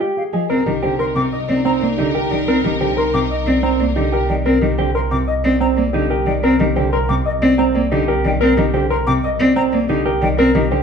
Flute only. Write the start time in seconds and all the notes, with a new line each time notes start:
0.17 F5
1.00 C6
1.16 D6
1.32 D#5
1.65 A#5
2.32 G5
2.98 C6
3.14 D6
3.30 D#5
3.63 A#5
4.29 G5
4.95 C6
5.11 D6
5.28 D#5
5.61 A#5
6.27 G5
6.92 C6
7.09 D6
7.26 D#5
7.58 A#5
8.25 G5
8.91 C6
9.07 D6
9.23 D#5
9.56 A#5
10.22 G5